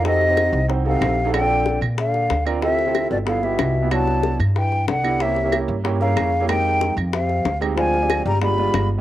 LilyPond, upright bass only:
\new Staff \with { instrumentName = "Upright bass" } { \clef bass \time 4/4 \key f \dorian \tempo 4 = 186 f,4. c,4. bes,,4~ | bes,,4. bes,4. d,4~ | d,4. g,,4. c,4~ | c,4. g,4. c,4~ |
c,4. g,4. f,4~ | f,4. f,4. d,4~ | d,4. g,,4. g,,4 | }